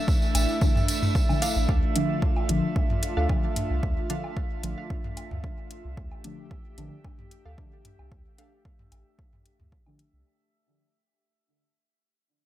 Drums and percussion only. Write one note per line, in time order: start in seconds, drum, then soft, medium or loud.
0.08 kick loud
0.08 tambourine medium
0.22 tambourine soft
0.35 closed hi-hat medium
0.35 tambourine medium
0.35 low woodblock soft
0.49 tambourine soft
0.61 kick loud
0.61 tambourine medium
0.76 mid tom medium
0.76 tambourine soft
0.88 closed hi-hat medium
0.88 tambourine loud
1.03 mid tom medium
1.03 tambourine soft
1.15 kick loud
1.15 tambourine soft
1.29 tambourine soft
1.29 low woodblock soft
1.42 closed hi-hat medium
1.42 tambourine loud
1.56 tambourine soft
1.69 kick loud
1.96 closed hi-hat medium
2.22 kick loud
2.37 low woodblock soft
2.49 closed hi-hat medium
2.76 kick loud
2.90 mid tom medium
3.03 closed hi-hat medium
3.29 kick loud
3.29 low woodblock soft
3.56 closed hi-hat medium
3.56 mid tom medium
3.83 kick loud
4.10 closed hi-hat medium
4.24 low woodblock soft
4.37 kick loud
4.63 closed hi-hat medium
4.90 kick loud
5.04 mid tom medium
5.17 closed hi-hat medium
5.17 low woodblock soft
5.31 mid tom medium
5.44 kick loud
5.71 closed hi-hat medium
5.97 kick loud
6.12 low woodblock soft
6.24 closed hi-hat medium
6.51 kick loud
6.78 closed hi-hat medium
7.04 kick loud
7.04 low woodblock soft
7.19 mid tom medium
7.31 closed hi-hat medium
7.58 kick loud
7.85 closed hi-hat medium
7.85 mid tom medium
7.99 low woodblock soft
8.12 kick loud
8.38 closed hi-hat medium
8.65 kick loud
8.79 mid tom medium
8.92 closed hi-hat medium
8.92 low woodblock soft
9.19 kick loud
9.33 mid tom medium
9.46 closed hi-hat medium
9.60 mid tom medium
9.72 kick medium
9.86 low woodblock soft
9.99 closed hi-hat medium